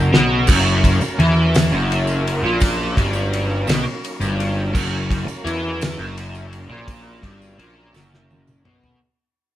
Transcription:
Already playing: F#2 C#3 F#3 A#5
0.12 B1 B2, snare
0.47 F#1 F#2 F#3 A#3 C#4 A#4, kick, crash, tambourine
0.84 kick, ride
1.01 muted picked electric bass stroke, muted overdriven electric guitar stroke, tambourine
1.19 E2 E3, ride
1.55 snare, ride, tambourine
1.72 F#1 F#2
1.90 ride, tambourine
2.07 tambourine
2.27 ride
2.43 A#1 A#2
2.60 kick, ride, tambourine
2.97 G1 G2, kick, ride
3.13 tambourine
3.33 ride
3.67 B1 B2, snare, ride, tambourine
4.04 ride, tambourine
4.20 G1 G2, tambourine
4.40 ride
4.73 F#1 F#2, kick, crash, tambourine
5.11 kick, ride
5.26 muted overdriven electric guitar stroke, muted picked electric bass stroke, tambourine
5.44 E2 E3, ride
5.81 snare, ride, tambourine
5.98 F#1 F#2
6.17 ride, tambourine
6.35 tambourine
6.53 ride
6.69 A#1 A#2
6.88 kick, ride, tambourine
7.23 G1 G2, kick, ride
7.42 tambourine
7.58 A#1 A#2, ride, tambourine
7.93 F#1 F#2, snare, tambourine
8.14 snare
8.30 high tom, tambourine
8.47 mid tom, tambourine
8.64 B1 B2, mid tom
8.83 floor tom, tambourine

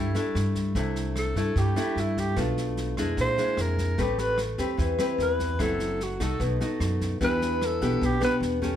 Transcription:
Already playing: G2 G3 A3 D4 E4
0.15 A3 D4 E4, snare
0.35 G2, cross-stick, snare
0.55 kick, snare
0.75 C2 C3 A3 D4 E4, kick, snare
0.95 snare
1.16 A4, cross-stick, snare
1.35 G2 A3 D4 E4, kick, snare
1.56 G2 G3 G4, kick, snare
1.76 A3 D4 E4, cross-stick, snare
1.96 G2, snare
2.00 E4
2.17 G4, kick, snare
2.36 B1 B2 A3 D4 F4, kick, cross-stick, snare
2.57 snare
2.77 snare
2.97 F2 G#3 D4 E4, kick, cross-stick, snare
3.17 A#1 A#2, kick, snare
3.21 C5
3.38 G#3 D4 E4, snare
3.57 F2 A#4, cross-stick, snare
3.78 kick, snare
3.98 A1 A3 C4 G4 B4, kick, snare
4.02 G4
4.18 B4, snare
4.38 cross-stick, snare
4.58 E2 C4 G4 B4, kick, snare
4.77 E2 E3, kick, snare
4.99 C4 G4 B4, cross-stick, snare
5.18 E2, snare
5.22 B4
5.39 kick, snare
5.59 F#1 F#3 C4 E4 A4, kick, cross-stick, snare
5.79 snare
6.00 F#4, snare
6.20 C2 A3 D#4 F#4 A4, kick, cross-stick, snare
6.40 B1 B2, kick, snare
6.61 A3 D#4 F#4, snare
6.80 F#2, cross-stick, snare
7.01 kick, snare
7.21 E2 E3 B3 D4 G4 B4, kick, snare
7.41 snare
7.61 cross-stick, snare
7.66 A4
7.81 B1 B3 D4 G4, kick, snare
8.01 B1 B2 G4, kick, snare
8.21 B3 D4 G4 B4, cross-stick, snare
8.40 E2, snare
8.62 A3 C#4 G4, kick, snare

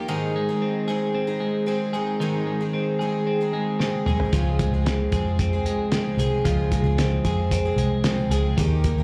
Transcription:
Already playing: A#3 D#4 G4
0.08 G#2 D#3 G#3 C4 D#4 G#4
0.36 G#3
0.49 G#3 C4 D#4 G#4
0.62 C4
0.88 G#3 C4 D#4 G#4
1.15 C4
1.27 G#3 C4 D#4 G#4
1.40 G#3
1.66 G#3 C4 D#4 G#4
1.93 G#3 C4 D#4 G#4
2.20 G#2 D#3 G#3 C4 D#4 G#4
2.46 G#3
2.61 G#3 C4 D#4 G#4
2.73 C4
2.99 G#3 C4 D#4 G#4
3.27 C4
3.41 G#3 C4 D#4 G#4
3.53 G#3
3.79 G#3 C4 D#4 G#4, snare
4.06 G#3 C4 D#4 G#4, mid tom
4.20 floor tom
4.33 C#2 C#3 F3 G#3 C4 G#4, kick, closed hi-hat
4.59 G#3, kick, closed hi-hat
4.72 C#2 G#3 C4 G#4
4.86 C4, snare, closed hi-hat
5.12 F2 F3 G#3 C4 G#4, kick, closed hi-hat
5.39 C4, kick, closed hi-hat
5.53 G#3 C4 G#4
5.64 C2 G#3, closed hi-hat
5.92 F3 G#3 C4 G#4, snare, closed hi-hat
6.18 C2 F3 G#3 C4 G#4, closed hi-hat
6.45 C#2 C#3 F3 G#3 C4 G#4, kick, closed hi-hat
6.71 G#3, kick, closed hi-hat
6.83 C#2 G#3 C4 G#4
6.98 C4, snare, closed hi-hat
7.24 F2 F3 G#3 C4 G#4, kick, closed hi-hat
7.51 C4, kick, closed hi-hat
7.65 G#3 C4 G#4
7.76 C2 G#3, closed hi-hat
8.04 F3 G#3 C4 G#4, snare, closed hi-hat
8.30 C#2 F3 G#3 C4 G#4, closed hi-hat
8.57 D#2 D#3 A#3 D#4 G4, kick, closed hi-hat
8.84 A#3, kick, closed hi-hat
8.97 D#2 A#3 D#4 G4

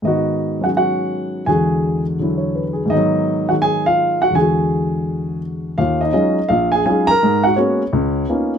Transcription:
0.02 G#2 D#3 B3 D#4 D#5
0.07 F#4
0.60 F#3 C#4 G#4 F#5
0.66 F#4
0.77 F#4 F#5
1.46 E2 D3 G#3 F#4 G#4 G#5
2.19 D3 F#3 E4
2.38 C#5
2.55 B4
2.73 G#4
2.86 G#2 D#3
2.90 B3 D#4 D#5
2.96 F#3
3.49 D#3 G#3 D#4 F#4 F#5
3.62 G#4 G#5
3.86 F4 F5
4.22 F#4 F#5
4.30 E2 D3
4.35 G#3 G#4 G#5
4.41 F#4
5.78 D#2 F4 F5
6.01 D#4 D#5
6.13 F#3 G#3 C#4 D#4 F4 D#5
6.49 A#1 F4 F5
6.72 G#4 G#5
6.86 F#3 G#3 C#4 D#4 F4 G#4 G#5
7.07 A#4 A#5
7.23 G#2 G#3
7.44 F#4 F#5
7.56 G#3 A#3 B3 C#4 F#4 C#5
7.93 C#2
8.29 A#3 B3 C#4 D#4 F4

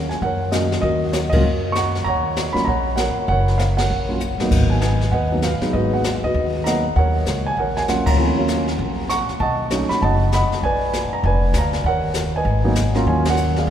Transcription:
Already playing: D#2 A#4 C#5
0.09 G#5, snare
0.22 F#2 A#4 C#5 F#5, brush sweep, kick
0.51 F#3 A#3 C#4 F#4 A#4 D#5 F5, snare, hi-hat pedal
0.72 snare
0.81 D#2 F#4 A#4 D#5, brush sweep, kick
1.12 C#5, snare, hi-hat pedal
1.30 C#2 F#3 A#3 A#4 D#5, kick, ride
1.34 C#4 F4 F#4
1.43 F#2, brush sweep
1.72 A#5 C#6, snare, hi-hat pedal
1.77 F#5
1.95 snare
2.04 D#2 C#5 A#5, brush sweep, kick
2.08 F#5
2.36 snare, hi-hat pedal
2.53 F#3 A#3 C#4 F4 B5, muted upright bass stroke, snare
2.65 A#1 C#5 F#5 A#5, brush sweep, kick
2.96 F#5, snare, hi-hat pedal
3.00 A#4 C#5
3.16 muted upright bass stroke
3.28 F#1 A#4 C#5 F#5, brush sweep, kick
3.48 snare
3.58 F5, snare, hi-hat pedal
3.77 A#4 C#5 F#5, snare, ride
3.90 A#1, brush sweep
4.09 F#3 A#3 C#4 F4
4.20 hi-hat pedal
4.38 A#1 F#3 A#3 B3 D#4, snare
4.51 G#1, brush sweep, kick, crash
4.70 G#5
4.81 B4 D#5 G#5, snare, hi-hat pedal
5.01 snare
5.12 D#2 B4 D#5 F#5, brush sweep, kick
5.32 F#3 A#3 B3 D#4
5.42 B4 F5, snare, hi-hat pedal
5.61 F#3 G#3 B3 D#4, muted upright bass stroke, snare
5.73 G#1 F#4 B4 D#5, brush sweep, kick
5.94 F#5
6.04 snare, hi-hat pedal
6.23 D#2 F#4 B4 D#5
6.34 D#2, brush sweep, kick
6.64 F#3 A#3 B3 D#4 D#5 F#5 A#5, snare, hi-hat pedal
6.96 D#2 A#4 C#5 F#5, brush sweep, kick
7.25 C#2, snare, hi-hat pedal
7.46 G#5
7.57 A#1 A#4 C#5 F#5, brush sweep, kick
7.77 G#5, snare
7.88 F#3 A#3 C#4 F4 F#5, snare, hi-hat pedal
8.06 D2 C#5 F#5 A#5, kick, ride
8.17 D#2 F3 A3 C4 E4, brush sweep
8.38 F#3 A#3 C#4 F4
8.48 snare, hi-hat pedal
8.68 snare
8.78 A#1, brush sweep, kick
9.09 F#5 A#5 C#6, snare, hi-hat pedal
9.29 muted upright bass stroke, snare
9.40 B1 D#5 F#5 A5, brush sweep, kick
9.70 F#3 A3 C#4 D#4, snare, hi-hat pedal
9.89 B5, muted upright bass stroke, snare
10.02 F#1 D#5 F#5 A5, brush sweep, kick
10.32 D#5 F#5 B5, snare, hi-hat pedal
10.50 muted upright bass stroke, snare
10.63 A#1 B4 D5 G#5, brush sweep, kick
10.93 snare, hi-hat pedal
11.12 A#5, muted upright bass stroke
11.23 F1 B4 G#5, brush sweep, kick
11.28 D5
11.53 D2, snare, hi-hat pedal
11.58 D5 F5 A#5
11.73 snare
11.84 D#2 C#5 F#5, brush sweep, kick
11.88 A#4
12.14 snare, hi-hat pedal
12.36 B4 D#5 G#5
12.45 G#1, brush sweep, kick
12.64 F#3 A#3 B3 D#4
12.75 snare, hi-hat pedal
12.94 F#3 A#3 C#4 F4 A#5, snare
13.06 D#2 C#5 G#5, brush sweep, kick
13.25 snare, ride
13.30 A#4 C#5 F#5
13.37 hi-hat pedal
13.56 G#4 D5 F5, snare
13.67 A#1

